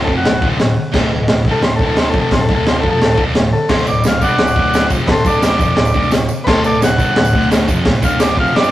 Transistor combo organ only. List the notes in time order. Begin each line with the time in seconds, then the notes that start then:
0.04 A4
0.17 F#4
1.51 A4
1.64 C5
1.76 A4
1.86 A4
2.00 C5
2.10 A4
2.20 A4
2.33 C5
2.41 A4
2.55 A4
2.68 C5
2.80 A4
2.91 A4
3.53 A4
3.69 C5
3.88 D5
4.08 F5
4.22 D5 F#5
5.07 A4 B4
5.12 C5
5.25 A4 D5
5.46 D5
6.44 A4 B4 C5
6.66 A4 D5
6.84 F#5
8.04 F5
8.20 D5
8.40 F5
8.56 D5